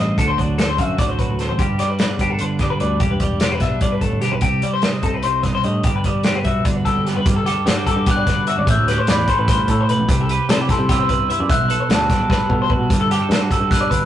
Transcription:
Already playing: G2 G3 D#4
0.00 A1 C4 D#5
0.18 D2 D3 A4, kick, closed hi-hat
0.28 C5
0.38 F#3 D5, kick, closed hi-hat
0.58 C4 A4, snare, closed hi-hat
0.69 C5
0.78 F#2 F#4 E5, kick, closed hi-hat
0.98 D2 A2 D5, kick, snare, closed hi-hat
1.09 C5
1.19 F#3 B4, kick, closed hi-hat
1.30 D2
1.39 C4 A4, snare, closed hi-hat
1.49 A1 C5
1.58 G1 G2 G4, kick, closed hi-hat
1.79 G3 D5, snare, closed hi-hat
1.90 B4
1.99 B3 D5, snare, closed hi-hat
2.19 G1 D4 G4, kick, closed hi-hat
2.30 A4
2.39 G1 D3 B4, closed hi-hat
2.59 G3 D5, kick, snare, closed hi-hat
2.70 B4
2.80 D2 B3 D5, closed hi-hat
3.00 E1 G2 G4, kick, closed hi-hat
3.11 B4
3.20 G3 D5, kick, closed hi-hat
3.40 B3 G4, snare, closed hi-hat
3.52 B4
3.60 B1 D4 E5, kick, snare, closed hi-hat
3.81 G1 G2 D5, kick, closed hi-hat
3.92 B4
4.01 A2 A4, kick, closed hi-hat
4.12 G1
4.21 B2 G4, snare, closed hi-hat
4.31 B1 B4
4.41 C2 C3 G4, kick, closed hi-hat
4.62 G3 D5, closed hi-hat
4.73 C5
4.82 C4 D#5, snare, closed hi-hat
5.03 C2 D#4 A4, kick, closed hi-hat
5.14 B4
5.23 C2 C3 C5, closed hi-hat
5.43 B2 D#5, kick, snare, closed hi-hat
5.55 C5
5.64 G2 A2 D#5, closed hi-hat
5.83 G1 G2 G4, kick, closed hi-hat
5.96 B4
6.04 G3 D5, kick, closed hi-hat
6.23 B3 G4, snare, closed hi-hat
6.36 B4
6.44 B1 F#4 E5, kick, closed hi-hat
6.65 G1 D3 D5, kick, closed hi-hat
6.75 B4
6.85 G3 A4, kick, closed hi-hat
6.96 G1
7.06 B3 G4, snare, closed hi-hat
7.16 F#1 B4
7.26 G1 G2 G4, kick, closed hi-hat
7.35 G1 A4
7.46 G4 A4, snare, closed hi-hat
7.66 G2 F#4 A4, snare, closed hi-hat
7.77 G4
7.87 G3 A4, kick, closed hi-hat
7.92 D6
7.96 G2
8.06 B3 G4, kick, closed hi-hat
8.11 F#6
8.17 D5
8.27 G1 D3 B4, kick, snare, closed hi-hat
8.47 F#4 E5, closed hi-hat
8.57 G#1 D5
8.67 A1 A2 E5 G6, kick, closed hi-hat
8.78 D2
8.88 G4 B4, snare, closed hi-hat
8.98 C5
9.07 E2 E4 D5 B5, snare, closed hi-hat
9.28 A3 C5, kick, closed hi-hat
9.38 A1 B4
9.48 G2 C5, kick, snare, closed hi-hat
9.68 A2 A4, kick, closed hi-hat
9.81 C5
9.89 B2 B4, closed hi-hat
9.98 B1
10.08 C2 C3 G4, kick, closed hi-hat
10.19 C2 A4
10.29 G4 B4, closed hi-hat
10.49 C3 E4 A4, snare, closed hi-hat
10.61 G4
10.69 G3 A4 C6, kick, snare, closed hi-hat
10.79 C3
10.89 B3 G4 E6, kick, snare, closed hi-hat
10.99 C5
11.09 C2 G2 B4, kick, closed hi-hat
11.30 E4 E5, closed hi-hat
11.39 F#2 D5
11.50 B1 B2 E5 F#6, kick, closed hi-hat
11.59 B1
11.68 A4 B4, closed hi-hat
11.80 C5
11.89 D2 F#4 D5, snare, closed hi-hat
11.94 A5
12.10 G3 B4, kick, snare, closed hi-hat
12.19 B1 A4
12.30 B3 B4, kick, snare
12.49 B2 A4, kick
12.62 C5
12.70 F#4 B4, kick
12.79 B2
12.90 G1 G2 G4, kick, closed hi-hat
12.99 G1 A4
13.11 G4, snare, closed hi-hat
13.22 A4
13.29 G2 F#4 A4, snare, closed hi-hat
13.41 G4
13.51 G3 A4 E6, kick, closed hi-hat
13.60 G2
13.71 B3 G4 F#6, kick, snare, closed hi-hat
13.81 D5
13.90 G1 D3 B4, kick, closed hi-hat

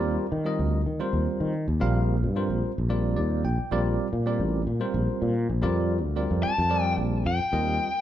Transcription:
Already playing: D#2 G3 C4 F4 A#4 D5
0.32 D#3
0.45 G3 C4 F4 A#4 D#5
0.59 D2
0.86 D#3
1.00 G3 C4 F4 A#4 C5
1.13 D#2
1.40 D#3
1.68 D#2
1.80 A#1 G3 C4 F4 A#4 F5
2.23 G2
2.36 G3 C4 F4 A#4 C5
2.50 A#1
2.63 muted fretless electric bass stroke
2.78 A#1
2.89 G3 C4 F4 A#4 D5
3.16 D#2 D5
3.44 A#1 G5
3.58 muted fretless electric bass stroke
3.71 A#1 G3 C4 F4 A#4 D5
4.13 A#2
4.26 G3 C4 F4 A#4 D5
4.40 A1
4.67 A#2
4.80 G3 C4 F4 A#4 C5
4.94 A#1
5.22 A#2
5.49 A#1
5.62 F2 G3 C4 F4 A#4 D5
6.03 D2
6.16 G3 C4 F4 A#4 D5
6.31 F2
6.43 A5, muted fretless electric bass stroke
6.58 F2
6.70 G3 C4 F4 A#4 D5
6.98 A#1
7.26 F2 G5
7.39 muted fretless electric bass stroke
7.52 D#2 G3 C4 F4 A#4 D#5

